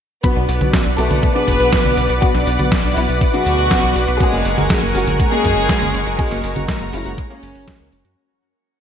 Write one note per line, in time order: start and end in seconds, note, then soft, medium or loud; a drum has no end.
0.24 0.41 B2 medium
0.24 0.41 F#3 medium
0.24 0.41 B3 medium
0.24 0.32 B3 medium
0.24 0.50 B3 medium
0.24 0.41 D4 medium
0.24 0.41 F#4 loud
0.24 0.50 B4 loud
0.24 4.17 B4 medium
0.24 4.17 D5 medium
0.24 8.13 F#5 medium
0.24 4.17 D6 medium
0.24 kick loud
0.24 closed hi-hat medium
0.24 cabasa soft
0.36 0.47 B1 medium
0.36 0.41 D4 loud
0.49 0.60 B1 loud
0.49 0.54 F#4 medium
0.49 open hi-hat loud
0.49 cabasa medium
0.61 0.72 B1 medium
0.61 0.78 B2 medium
0.61 0.78 F#3 medium
0.61 0.78 B3 medium
0.61 0.78 D4 medium
0.61 0.78 F#4 medium
0.61 0.70 B4 medium
0.61 closed hi-hat medium
0.61 high conga medium
0.61 cabasa soft
0.73 0.82 B3 loud
0.73 kick loud
0.73 snare loud
0.73 closed hi-hat medium
0.73 cabasa soft
0.86 0.97 B1 medium
0.86 0.98 D4 medium
0.86 closed hi-hat soft
0.98 1.09 B1 medium
0.98 1.25 B2 medium
0.98 1.25 F#3 medium
0.98 1.25 A3 medium
0.98 1.25 B3 medium
0.98 1.25 D4 medium
0.98 1.25 F#4 medium
0.98 1.07 F#4 medium
0.98 1.25 A4 medium
0.98 open hi-hat loud
0.98 cabasa medium
1.10 1.22 B1 medium
1.10 1.16 B4 loud
1.10 closed hi-hat medium
1.10 high conga medium
1.10 cabasa soft
1.23 1.32 B3 medium
1.23 kick loud
1.23 closed hi-hat medium
1.23 cabasa soft
1.35 1.69 B2 medium
1.35 1.69 F#3 medium
1.35 2.12 B3 medium
1.35 1.69 B3 medium
1.35 1.69 D4 medium
1.35 1.41 D4 loud
1.35 1.69 G#4 medium
1.35 2.12 B4 loud
1.48 1.59 F#1 loud
1.48 1.60 F#4 medium
1.48 kick medium
1.48 open hi-hat loud
1.48 cabasa medium
1.60 1.71 B1 medium
1.60 1.65 B4 medium
1.60 closed hi-hat medium
1.60 cabasa soft
1.72 1.89 B2 medium
1.72 1.89 F#3 medium
1.72 1.89 B3 medium
1.72 1.84 B3 loud
1.72 1.89 D4 medium
1.72 1.89 F#4 medium
1.72 kick loud
1.72 snare loud
1.72 closed hi-hat medium
1.72 cabasa soft
1.85 1.96 B1 medium
1.85 1.97 D4 medium
1.85 closed hi-hat soft
1.85 high conga medium
1.97 2.08 B1 medium
1.97 2.06 F#4 medium
1.97 open hi-hat loud
1.97 cabasa medium
2.10 2.21 B1 medium
2.10 2.15 B4 loud
2.10 closed hi-hat medium
2.10 cabasa soft
2.22 2.39 B2 loud
2.22 2.39 F#3 medium
2.22 2.31 B3 medium
2.22 2.39 B3 medium
2.22 2.39 D4 medium
2.22 2.48 F#4 loud
2.22 2.39 F#4 loud
2.22 kick loud
2.22 closed hi-hat medium
2.22 cabasa soft
2.34 2.46 B1 medium
2.34 2.40 D4 loud
2.34 snare soft
2.47 2.58 B1 loud
2.47 2.52 F#4 medium
2.47 open hi-hat loud
2.47 cabasa medium
2.59 2.70 B1 medium
2.59 2.76 B2 medium
2.59 2.76 F#3 medium
2.59 2.76 B3 medium
2.59 2.76 D4 medium
2.59 2.76 F#4 medium
2.59 2.68 B4 medium
2.59 closed hi-hat medium
2.59 high conga medium
2.59 cabasa soft
2.71 2.80 B3 loud
2.71 kick loud
2.71 snare loud
2.71 closed hi-hat medium
2.71 cabasa soft
2.84 2.95 B1 medium
2.84 2.96 D4 medium
2.84 closed hi-hat soft
2.96 3.08 B1 loud
2.96 3.24 B2 medium
2.96 3.24 F#3 medium
2.96 3.24 B3 medium
2.96 3.24 D4 medium
2.96 3.23 E4 medium
2.96 3.05 F#4 medium
2.96 3.24 F#4 medium
2.96 open hi-hat medium
2.96 cabasa medium
3.09 3.20 B1 medium
3.09 3.14 B4 loud
3.09 closed hi-hat medium
3.09 cabasa soft
3.21 3.30 B3 medium
3.21 kick loud
3.21 closed hi-hat medium
3.21 cabasa soft
3.33 3.68 B2 medium
3.33 3.68 F#3 medium
3.33 3.68 B3 medium
3.33 3.39 D4 loud
3.33 3.68 D4 medium
3.33 4.10 F#4 loud
3.33 3.68 G#4 medium
3.46 3.57 D2 loud
3.46 3.58 F#4 medium
3.46 open hi-hat loud
3.46 cabasa medium
3.58 3.70 D2 medium
3.58 3.64 B4 medium
3.58 closed hi-hat medium
3.58 cabasa soft
3.71 3.88 B2 medium
3.71 3.88 F#3 medium
3.71 3.88 B3 medium
3.71 3.83 B3 loud
3.71 3.88 D4 medium
3.71 3.88 F#4 medium
3.71 kick loud
3.71 snare loud
3.71 closed hi-hat medium
3.71 cabasa soft
3.83 3.94 B1 medium
3.83 3.95 D4 medium
3.83 closed hi-hat soft
3.95 4.07 B1 medium
3.95 4.04 F#4 medium
3.95 open hi-hat medium
3.95 cabasa medium
4.08 4.19 B1 medium
4.08 4.13 B4 loud
4.08 closed hi-hat medium
4.08 cabasa soft
4.20 4.29 G#3 medium
4.20 4.37 G#3 loud
4.20 4.47 G#3 medium
4.20 4.37 A#3 medium
4.20 4.37 C#4 medium
4.20 4.37 F#4 loud
4.20 4.47 G#4 loud
4.20 8.13 A#4 medium
4.20 6.17 G#5 medium
4.20 8.13 C#6 medium
4.20 kick loud
4.20 closed hi-hat medium
4.20 cabasa soft
4.33 4.44 F#1 medium
4.33 4.38 A#3 loud
4.45 4.56 F#1 medium
4.45 4.50 C#4 medium
4.45 open hi-hat loud
4.45 cabasa medium
4.57 4.69 F#1 medium
4.57 4.74 G#3 medium
4.57 4.74 A#3 medium
4.57 4.74 C#4 medium
4.57 4.74 F#4 medium
4.57 4.66 F#4 medium
4.57 closed hi-hat medium
4.57 high conga medium
4.57 cabasa soft
4.70 4.79 G#3 loud
4.70 kick loud
4.70 snare loud
4.70 closed hi-hat medium
4.70 cabasa soft
4.83 4.94 F#1 medium
4.83 4.94 A#3 medium
4.83 closed hi-hat soft
4.95 5.06 F#1 loud
4.95 5.22 G#3 medium
4.95 5.22 A#3 medium
4.95 5.22 C#4 medium
4.95 5.04 C#4 medium
4.95 5.22 F#4 medium
4.95 5.21 F#4 medium
4.95 open hi-hat medium
4.95 cabasa medium
5.07 5.18 F#1 medium
5.07 5.12 F#4 loud
5.07 closed hi-hat medium
5.07 high conga medium
5.07 cabasa soft
5.20 5.28 G#3 medium
5.20 kick loud
5.20 closed hi-hat medium
5.20 cabasa soft
5.32 5.66 G#3 medium
5.32 6.09 G#3 medium
5.32 5.66 A#3 medium
5.32 5.37 A#3 loud
5.32 5.66 C#4 medium
5.32 5.66 G#4 loud
5.32 6.09 G#4 loud
5.44 5.55 F#2 loud
5.44 5.56 C#4 medium
5.44 kick medium
5.44 open hi-hat loud
5.44 cabasa medium
5.57 5.68 F#1 medium
5.57 5.62 F#4 medium
5.57 closed hi-hat medium
5.57 cabasa soft
5.69 5.86 G#3 medium
5.69 5.81 G#3 loud
5.69 5.86 A#3 medium
5.69 5.86 C#4 medium
5.69 5.86 F#4 medium
5.69 kick loud
5.69 snare loud
5.69 closed hi-hat medium
5.69 cabasa soft
5.81 5.93 F#1 medium
5.81 5.93 A#3 medium
5.81 closed hi-hat soft
5.81 high conga medium
5.94 6.05 F#1 medium
5.94 6.03 C#4 medium
5.94 open hi-hat medium
5.94 cabasa medium
6.06 6.17 F#1 medium
6.06 6.12 F#4 loud
6.06 closed hi-hat medium
6.06 cabasa soft
6.19 6.36 G#3 medium
6.19 6.27 G#3 medium
6.19 6.45 G#3 medium
6.19 6.36 A#3 medium
6.19 6.36 C#4 medium
6.19 6.36 F#4 loud
6.19 6.45 G#4 loud
6.19 8.15 A#5 medium
6.19 kick loud
6.19 closed hi-hat medium
6.19 cabasa soft
6.31 6.42 F#1 medium
6.31 6.36 A#3 loud
6.31 snare soft
6.44 6.55 F#1 medium
6.44 6.49 C#4 medium
6.44 open hi-hat loud
6.44 cabasa medium
6.56 6.67 F#1 medium
6.56 6.73 G#3 medium
6.56 6.73 A#3 medium
6.56 6.73 C#4 medium
6.56 6.73 F#4 medium
6.56 6.65 F#4 medium
6.56 closed hi-hat medium
6.56 high conga medium
6.56 cabasa soft
6.68 6.77 G#3 loud
6.68 kick loud
6.68 snare loud
6.68 closed hi-hat medium
6.68 cabasa soft
6.81 6.92 F#1 medium
6.81 6.93 A#3 medium
6.81 closed hi-hat soft
6.93 7.04 F#1 medium
6.93 7.20 G#3 medium
6.93 7.20 A#3 medium
6.93 7.20 C#4 medium
6.93 7.02 C#4 medium
6.93 7.20 E4 medium
6.93 7.20 F#4 medium
6.93 open hi-hat medium
6.93 cabasa medium
7.06 7.17 F#1 medium
7.06 7.11 F#4 loud
7.06 closed hi-hat medium
7.06 cabasa soft
7.18 7.27 G#3 medium
7.18 kick loud
7.18 closed hi-hat medium
7.18 cabasa soft
7.30 7.65 G#3 medium
7.30 7.65 A#3 medium
7.30 7.36 A#3 loud
7.30 7.65 C#4 medium
7.30 8.07 C#4 loud
7.30 7.65 G#4 loud
7.43 7.54 F#1 loud
7.43 7.55 C#4 medium
7.43 open hi-hat loud
7.43 cabasa medium
7.55 7.66 F#1 medium
7.55 7.60 F#4 medium
7.55 closed hi-hat medium
7.55 cabasa soft
7.68 7.84 G#3 medium
7.68 7.79 G#3 loud
7.68 7.85 A#3 medium
7.68 7.85 F#4 medium
7.68 kick loud
7.68 snare loud
7.68 closed hi-hat medium
7.68 cabasa soft
7.80 7.91 C#2 medium
7.80 7.92 A#3 medium
7.80 closed hi-hat soft
7.92 8.04 F#1 medium
7.92 8.01 C#4 medium
7.92 open hi-hat medium
7.92 cabasa medium
8.05 8.16 F#2 medium
8.05 8.10 F#4 loud
8.05 closed hi-hat medium
8.05 cabasa soft